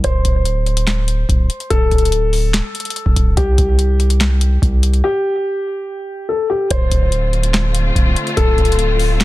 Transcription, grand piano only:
0.04 C5
1.70 A4
3.37 G4
5.04 G4
6.29 A4
6.50 G4
6.71 C5
8.37 A4

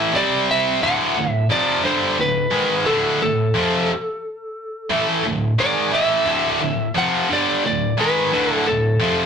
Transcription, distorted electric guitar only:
Already playing: A2 E3 A3
0.14 C3 G3 C4
0.82 D2 A2 D3
1.17 D2 A2
1.50 F2 C3 F3
1.83 G2 D3 G3
2.18 D2 A2
2.51 G#2 D#3 G#3
2.85 D2 A2 D3
3.21 D2 A2
3.54 F2 C3 F3
4.90 A2 E3 A3
5.25 D2 A2
5.59 G#2 D#3 G#3
5.92 A2 E3 A3
6.25 D2 A2 D3
6.60 D2 A2
6.95 F2 C3 F3
7.29 G2 D3 G3
7.64 D2 A2
7.97 G#2 D#3 G#3
8.32 D2 A2 D3
8.66 D2 A2
9.00 F2 C3 F3

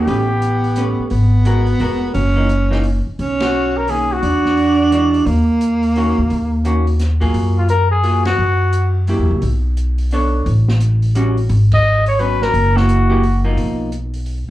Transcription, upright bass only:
0.07 A1
0.99 muted upright bass stroke
1.11 G#1
1.80 F1
2.15 F#1
3.07 muted upright bass stroke
3.19 B1
4.23 E2
5.26 D#2
6.18 D2
6.31 D#2
7.34 F#2
8.38 F#2
9.19 E2
9.30 C2
9.43 B1
10.46 A1
11.49 G#1
12.54 F#1
13.57 B1

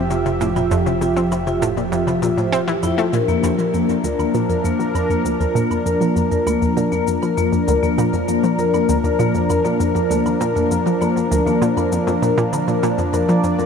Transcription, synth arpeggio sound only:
0.11 C3
0.26 C3
0.41 A2
0.56 A#2
0.71 F2
0.86 C3
1.01 C3
1.16 C4
1.32 C3
1.47 C3
1.62 A2
1.77 A#2
1.92 F2
2.07 C3
2.22 A#2
2.38 A2
2.52 C4
2.68 E3
2.83 F2
2.98 A3
3.13 A#2
3.28 F2
3.43 F2
3.58 F3
3.74 F2
3.89 F2
4.04 D2
4.19 D#2
4.35 A#2
4.49 F2
4.64 F2
4.79 F3
4.95 F2
5.10 F2
5.25 D2
5.40 D#2
5.55 A#2
5.70 F2
5.86 F2
6.01 F3
6.16 F2
6.31 F2
6.47 D2
6.62 D#2
6.77 A#2
6.92 F2
7.07 F2
7.22 F3
7.38 F2
7.53 F2
7.68 D2
7.83 D#2
7.98 A#2
8.13 F2
8.28 F2
8.44 F3
8.59 F2
8.74 F2
8.89 D2
9.04 D#2
9.19 A#2
9.35 F2
9.50 F2
9.65 F3
9.80 F2
9.95 F2
10.10 D2
10.26 D#2
10.41 A#2
10.56 F2
10.71 F2
10.86 F3
11.01 F2
11.16 F2
11.31 D2
11.46 D#2
11.62 A#2
11.77 F2
11.92 F2
12.07 F2
12.22 A#2
12.38 A#2
12.53 D3
12.68 A#2
12.83 A#2
12.98 F2
13.13 F2
13.29 F3
13.44 F2
13.59 F2

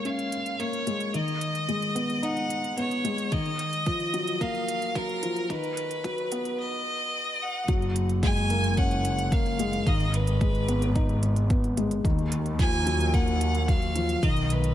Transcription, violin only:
0.05 F5
0.60 C#5
1.14 D#5
2.24 F#5
2.78 C#5
3.32 D#5
4.41 F5
4.96 A#4
5.50 B4
6.60 D#5
7.42 F#5
8.23 G#5
8.78 F#5
9.32 F5
9.87 D#5
10.14 B4
12.59 G#5
13.14 F#5
13.69 F5
14.23 D#5
14.51 B4

